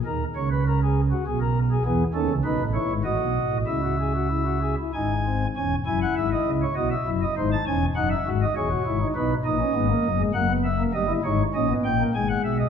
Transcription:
0.05 0.24 D#2 medium
0.05 0.24 D#3 medium
0.05 0.24 A#4 medium
0.35 1.13 C#2 medium
0.35 1.13 C#3 medium
0.35 0.48 C#5 medium
0.51 0.64 B4 medium
0.67 0.80 A#4 medium
0.83 1.01 G#4 medium
1.11 1.24 F#4 medium
1.26 1.77 B1 medium
1.26 1.77 B2 medium
1.26 1.39 G#4 medium
1.40 1.59 A#4 medium
1.71 1.83 G#4 medium
1.85 2.04 E2 loud
1.85 2.03 E3 loud
1.85 2.03 B3 medium
1.85 2.03 G#4 medium
2.14 2.27 D#2 medium
2.14 2.27 D#3 medium
2.14 2.33 C#4 medium
2.14 2.33 A4 medium
2.30 2.42 C#2 medium
2.30 2.42 C#3 medium
2.44 2.57 B1 medium
2.44 2.57 B2 medium
2.44 2.63 D#4 medium
2.44 2.63 B4 medium
2.59 2.78 A1 medium
2.59 2.77 A2 medium
2.73 2.92 E4 medium
2.73 2.93 C#5 medium
2.90 3.03 G#1 medium
2.90 3.02 G#2 medium
3.04 3.17 A1 medium
3.04 3.17 A2 medium
3.04 3.57 F#4 medium
3.04 3.57 D#5 medium
3.19 3.38 B1 medium
3.19 3.38 B2 medium
3.50 3.64 A1 medium
3.50 3.64 A2 medium
3.66 4.75 C#2 medium
3.66 4.75 C#3 medium
3.66 3.80 E4 medium
3.66 4.75 E5 medium
3.83 3.96 F#4 medium
4.00 4.12 G#4 medium
4.15 4.28 F#4 medium
4.30 4.43 E4 medium
4.46 4.59 F#4 medium
4.61 4.75 G#4 medium
4.78 4.91 E4 medium
4.93 5.47 G#1 medium
4.93 5.47 G#2 medium
4.93 5.13 D#4 medium
4.93 5.47 G#5 medium
5.25 5.44 C4 medium
5.56 5.75 E1 medium
5.56 5.75 E2 medium
5.56 5.75 C#4 medium
5.56 5.75 G#5 medium
5.86 6.05 F#1 medium
5.86 6.04 F#2 medium
5.86 6.63 E4 medium
5.86 5.99 G#5 medium
6.02 6.14 F#5 medium
6.16 6.35 G#1 medium
6.16 6.34 G#2 medium
6.16 6.29 E5 medium
6.32 6.50 D#5 medium
6.47 6.65 C#2 medium
6.47 6.65 C#3 medium
6.62 6.74 C#5 medium
6.75 6.94 B1 medium
6.75 6.94 B2 medium
6.75 6.94 F#4 medium
6.75 6.89 D#5 medium
6.91 7.09 E5 medium
7.06 7.25 F#1 medium
7.06 7.24 F#2 medium
7.06 7.25 E4 medium
7.22 7.34 D#5 medium
7.37 7.55 G#1 medium
7.37 7.55 G#2 medium
7.37 7.55 D#4 medium
7.37 7.49 C5 medium
7.52 7.64 A5 medium
7.67 7.85 E1 medium
7.67 7.85 E2 medium
7.67 7.85 C#4 medium
7.67 7.85 G#5 medium
7.96 8.14 F#1 medium
7.96 8.14 F#2 medium
7.96 8.14 D#4 medium
7.96 8.09 F#5 medium
8.10 8.29 E5 medium
8.26 8.44 G#1 medium
8.26 8.45 G#2 medium
8.26 8.44 F#4 medium
8.42 8.54 D#5 medium
8.56 8.74 E1 medium
8.56 8.74 E2 medium
8.56 8.68 G#4 medium
8.56 9.07 C#5 medium
8.70 8.83 F#4 medium
8.86 9.04 G#1 medium
8.86 9.04 G#2 medium
8.86 8.98 E4 medium
9.01 9.13 D#4 medium
9.15 9.34 B1 medium
9.15 9.33 B2 medium
9.15 9.34 D#4 medium
9.15 9.34 B4 medium
9.44 9.63 A#1 medium
9.44 9.63 A#2 medium
9.44 9.57 D#4 loud
9.44 10.21 D#5 medium
9.60 9.72 C#4 medium
9.74 9.92 G#1 medium
9.74 9.93 G#2 medium
9.74 9.87 B3 medium
9.90 10.08 A#3 loud
10.04 10.23 F#1 medium
10.04 10.23 F#2 medium
10.19 10.32 G#3 loud
10.34 10.85 F#1 medium
10.34 10.85 F#2 medium
10.34 10.47 A#3 loud
10.34 10.52 F#5 medium
10.48 10.67 B3 medium
10.64 10.82 E5 medium
10.79 10.91 A#3 medium
10.93 11.12 G1 medium
10.93 11.12 G2 medium
10.93 11.06 G3 loud
10.93 11.12 D#5 medium
11.07 11.21 E4 loud
11.24 11.42 G#1 medium
11.24 11.42 G#2 medium
11.24 11.43 D#4 loud
11.24 11.42 C#5 medium
11.54 11.73 A#1 medium
11.54 11.72 A#2 medium
11.54 11.67 C#4 medium
11.54 11.73 D#5 medium
11.69 11.88 B3 loud
11.85 12.03 A#1 medium
11.85 12.03 A#2 medium
11.85 12.03 G5 medium
12.00 12.12 A#3 medium
12.14 12.33 G#1 medium
12.14 12.33 G#2 medium
12.14 12.66 G#3 medium
12.14 12.27 G#5 medium
12.29 12.42 F#5 medium
12.44 12.63 B1 medium
12.44 12.63 B2 medium
12.44 12.57 E5 medium
12.58 12.69 D#5 medium

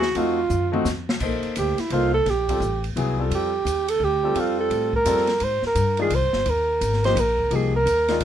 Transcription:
0.00 0.14 D#2 medium
0.00 0.18 F#4 medium
0.00 snare medium
0.15 0.49 F2 medium
0.15 0.36 A3 medium
0.15 0.36 C4 medium
0.15 0.36 D#4 medium
0.15 0.87 F4 medium
0.15 0.37 F#4 medium
0.15 ride medium
0.50 0.84 F#2 loud
0.50 hi-hat pedal medium
0.50 mid tom soft
0.72 0.84 A3 medium
0.72 0.85 C4 medium
0.72 0.85 D#4 medium
0.72 0.85 F#4 medium
0.72 mid tom medium
0.85 1.19 F2 medium
0.85 snare medium
0.85 hi-hat pedal medium
1.09 snare medium
1.20 1.42 A#1 medium
1.20 1.74 A#3 medium
1.20 1.74 D#4 medium
1.20 1.75 A4 soft
1.20 1.75 C5 medium
1.20 kick medium
1.20 crash medium
1.43 muted upright bass stroke soft
1.43 ride soft
1.56 1.77 D2 medium
1.56 1.81 G4 medium
1.56 hi-hat pedal medium
1.56 ride medium
1.78 1.94 E4 medium
1.78 muted upright bass stroke soft
1.78 snare soft
1.78 ride soft
1.90 2.25 C2 medium
1.90 2.11 A#3 medium
1.90 2.12 D#4 medium
1.90 2.13 F4 medium
1.90 2.12 A4 medium
1.90 2.12 C5 medium
1.90 ride medium
2.14 2.31 A4 loud
2.26 2.60 A#1 medium
2.26 2.85 G4 medium
2.26 snare soft
2.26 ride soft
2.49 2.60 G3 medium
2.49 2.60 C4 medium
2.49 2.61 F4 medium
2.49 2.61 A4 medium
2.49 kick medium
2.49 ride medium
2.60 2.95 A1 medium
2.60 hi-hat pedal medium
2.84 ride soft
2.96 3.30 C2 medium
2.96 3.16 F#3 medium
2.96 3.16 B3 medium
2.96 3.17 E4 medium
2.96 3.17 G#4 medium
2.96 ride medium
3.19 3.49 G3 medium
3.19 3.50 C4 soft
3.19 3.50 F4 medium
3.19 3.50 A4 medium
3.30 3.64 F2 medium
3.30 ride medium
3.35 3.91 G4 medium
3.65 4.00 D#2 medium
3.65 hi-hat pedal medium
3.65 ride medium
3.88 4.06 A4 loud
3.88 ride medium
4.00 4.34 D2 medium
4.04 4.41 G4 medium
4.24 4.34 G3 medium
4.24 4.34 C4 medium
4.24 4.35 F4 medium
4.24 4.35 A4 medium
4.35 4.69 F2 medium
4.35 4.89 G3 medium
4.35 4.89 C4 medium
4.35 4.89 F4 medium
4.35 4.89 A4 medium
4.35 ride medium
4.40 4.59 F4 medium
4.60 4.95 A4 medium
4.70 5.05 A2 medium
4.70 ride medium
4.93 5.45 A#4 medium
4.93 kick medium
5.05 5.40 F2 medium
5.05 5.26 G3 medium
5.05 5.26 C4 medium
5.05 5.26 F4 medium
5.05 5.27 A4 medium
5.05 hi-hat pedal medium
5.05 ride medium
5.18 snare soft
5.27 snare soft
5.27 ride soft
5.40 5.62 G#2 medium
5.40 5.65 C5 medium
5.40 ride medium
5.62 5.98 A#4 medium
5.62 muted upright bass stroke soft
5.62 snare soft
5.75 6.10 G2 loud
5.75 hi-hat pedal soft
5.75 ride medium
5.97 6.10 D#3 medium
5.97 6.10 G#3 medium
5.97 6.10 D4 medium
5.97 6.10 F4 medium
5.97 ride soft
6.02 6.16 G#4 medium
6.10 6.23 C2 medium
6.10 ride medium
6.15 6.51 C5 loud
6.22 6.33 G#1 medium
6.33 6.45 G1 medium
6.33 snare medium
6.46 6.80 D#2 medium
6.46 ride medium
6.50 7.04 A#4 medium
6.81 7.15 G#1 medium
6.81 hi-hat pedal medium
6.81 ride medium
6.93 snare soft
7.04 7.15 F3 medium
7.04 7.15 A#3 medium
7.04 7.16 D#4 medium
7.04 7.16 G4 medium
7.04 7.21 C5 loud
7.04 snare soft
7.04 ride soft
7.16 7.50 A#1 medium
7.16 hi-hat pedal medium
7.16 ride medium
7.20 7.57 A#4 medium
7.39 kick medium
7.51 7.85 C2 medium
7.51 7.71 F3 medium
7.51 7.71 A#3 medium
7.51 7.72 D#4 medium
7.51 7.72 G4 medium
7.51 ride medium
7.55 7.75 G#4 medium
7.76 8.19 A#4 loud
7.86 8.20 D#2 medium
7.86 hi-hat pedal medium
7.86 ride medium
8.08 8.20 D#3 medium
8.08 8.20 G#3 medium
8.08 8.20 D4 medium
8.08 8.21 F4 medium
8.08 snare medium
8.08 ride soft
8.20 8.24 A#2 medium
8.20 ride medium

